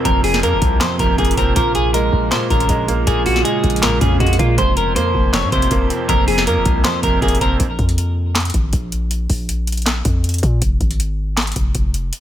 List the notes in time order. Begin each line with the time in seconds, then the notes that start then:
Already playing: F2 C3 F3 A#3 C4 F4
0.05 F1 F2 A#4, kick, closed hi-hat
0.24 G#4, open hi-hat
0.34 snare
0.43 F2 A#3 A#4, closed hi-hat
0.53 F1
0.62 C2, kick, closed hi-hat
0.81 F2 C5, snare, clap, closed hi-hat
0.99 F1 C3 A#4, kick, closed hi-hat
1.18 F1 A#3 G#4, kick, closed hi-hat
1.25 closed hi-hat
1.31 closed hi-hat
1.37 F1 C4 A#4, kick, closed hi-hat
1.56 A#1 A#2 C#3 G#3 A#4, kick, closed hi-hat
1.75 G#4, closed hi-hat
1.94 G#3 A#4, closed hi-hat
2.13 A#1, kick
2.31 A#2 C5, snare, clap, closed hi-hat
2.50 G#1 C#3 A#4, kick, closed hi-hat
2.60 closed hi-hat
2.69 A#1 G#3, kick, closed hi-hat
2.88 A#3, closed hi-hat
3.07 A#1 A#2 G#4, kick, closed hi-hat
3.26 F#4, open hi-hat
3.36 snare
3.45 G#3 G#4, closed hi-hat
3.64 A#1, kick, closed hi-hat
3.70 closed hi-hat
3.76 closed hi-hat
3.83 A#2 A#4, snare, clap, closed hi-hat
4.01 F2 C#3 G#4, kick, closed hi-hat
4.20 F2 G#3 F#4, kick, closed hi-hat
4.27 closed hi-hat
4.33 closed hi-hat
4.39 A#2 A#3 F4, kick, closed hi-hat
4.58 F1 F2 C3 F3 A#3 F4 C5, kick, closed hi-hat
4.77 A#4, closed hi-hat
4.96 F2 A#3 C5, closed hi-hat
5.15 F1, kick
5.33 F2 C#5, snare, clap, closed hi-hat
5.43 G#2
5.52 F1 C3 C5, kick, closed hi-hat
5.62 closed hi-hat
5.71 F1 A#3, kick, closed hi-hat
5.90 C4, closed hi-hat
6.09 F1 F2 A#4, kick, closed hi-hat
6.28 G#4, open hi-hat
6.38 snare
6.47 F2 A#3 A#4, closed hi-hat
6.57 F1
6.65 C2, kick, closed hi-hat
6.84 F2 C5, snare, clap, closed hi-hat
7.03 F1 C3 A#4, kick, closed hi-hat
7.22 F1 A#3 G#4, kick, closed hi-hat
7.28 closed hi-hat
7.35 closed hi-hat
7.41 F1 C4 A#4, kick, closed hi-hat
7.60 A#1, kick, closed hi-hat
7.79 F2, kick, closed hi-hat
7.89 closed hi-hat
7.98 closed hi-hat
8.35 snare, clap, closed hi-hat
8.40 closed hi-hat
8.45 closed hi-hat
8.50 closed hi-hat
8.54 G#1, kick, closed hi-hat
8.73 A#1, kick, closed hi-hat
8.92 closed hi-hat
9.11 closed hi-hat
9.30 A#1, kick, open hi-hat
9.49 closed hi-hat
9.67 closed hi-hat
9.72 closed hi-hat
9.77 closed hi-hat
9.82 closed hi-hat
9.86 snare, clap, closed hi-hat
10.05 F2, kick, closed hi-hat
10.24 closed hi-hat
10.29 closed hi-hat
10.34 closed hi-hat
10.38 closed hi-hat
10.43 A#2, kick, closed hi-hat
10.62 F1, kick, closed hi-hat
10.81 G#1, kick, closed hi-hat
10.91 closed hi-hat
11.00 closed hi-hat
11.37 snare, clap, closed hi-hat
11.42 closed hi-hat
11.47 closed hi-hat
11.52 closed hi-hat
11.56 F1, kick, closed hi-hat
11.75 F1, kick, closed hi-hat
11.94 closed hi-hat
12.13 closed hi-hat